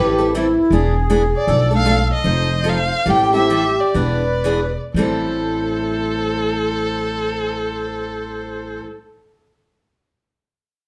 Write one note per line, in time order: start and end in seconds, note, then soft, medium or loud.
0.00 0.56 A1 medium
0.00 0.17 E3 medium
0.00 0.17 G3 medium
0.00 0.17 C4 medium
0.00 0.17 E4 medium
0.00 0.31 G4 medium
0.00 0.17 A4 medium
0.00 0.19 B4 medium
0.18 0.34 C4 soft
0.18 0.33 E4 medium
0.18 0.33 A4 medium
0.35 0.45 E3 medium
0.35 0.46 G3 medium
0.35 0.46 C4 medium
0.35 0.73 E4 medium
0.35 0.46 E4 medium
0.35 0.46 A4 medium
0.70 1.32 E1 medium
0.70 0.93 E3 medium
0.70 0.93 B3 medium
0.70 0.94 D4 medium
0.70 1.50 G#4 medium
0.70 0.94 G#4 medium
1.10 1.21 E3 medium
1.10 1.21 B3 medium
1.10 1.21 D4 medium
1.10 1.21 G#4 medium
1.37 1.71 D5 medium
1.47 2.09 B1 medium
1.47 1.69 B2 medium
1.47 1.69 F3 medium
1.47 1.69 A3 medium
1.47 1.69 D4 medium
1.47 2.20 A4 loud
1.47 1.69 A4 medium
1.71 1.84 A3 medium
1.71 1.85 D4 soft
1.71 1.85 A4 medium
1.75 2.10 F5 medium
1.85 1.97 B2 medium
1.85 1.97 F3 medium
1.85 1.97 A3 medium
1.85 1.98 D4 medium
1.85 1.98 A4 medium
2.14 2.70 D#5 medium
2.24 2.89 F1 medium
2.24 2.47 F3 medium
2.24 2.47 C4 medium
2.24 2.47 D#4 medium
2.24 2.47 A4 medium
2.24 3.02 C5 loud
2.64 2.76 F3 medium
2.64 2.77 C4 medium
2.64 2.77 D#4 medium
2.64 2.77 A4 medium
2.69 3.11 F5 medium
3.06 3.77 A1 medium
3.06 3.30 E3 medium
3.06 3.30 G3 medium
3.06 3.30 C4 medium
3.06 3.30 E4 medium
3.06 3.98 G4 loud
3.06 3.30 A4 medium
3.10 3.35 G5 medium
3.33 3.49 C4 soft
3.33 3.49 E4 medium
3.33 3.49 A4 medium
3.33 3.82 E5 medium
3.50 3.63 E3 medium
3.50 3.63 G3 medium
3.50 3.63 C4 medium
3.50 3.63 E4 medium
3.50 3.63 A4 medium
3.80 4.77 D5 medium
3.94 4.75 E1 medium
3.94 4.21 E3 medium
3.94 4.22 B3 medium
3.94 4.22 D4 medium
3.94 4.22 G#4 medium
3.94 4.72 B4 medium
4.44 4.59 E3 medium
4.44 4.59 B3 medium
4.44 4.59 D4 medium
4.44 4.59 G#4 medium
4.94 8.79 A1 medium
4.94 8.85 A2 medium
4.94 8.86 E3 medium
4.94 8.86 G3 medium
4.94 8.86 C4 medium
4.94 8.82 A4 medium
4.94 8.81 C5 medium
4.98 8.87 E4 medium
4.98 8.88 A4 medium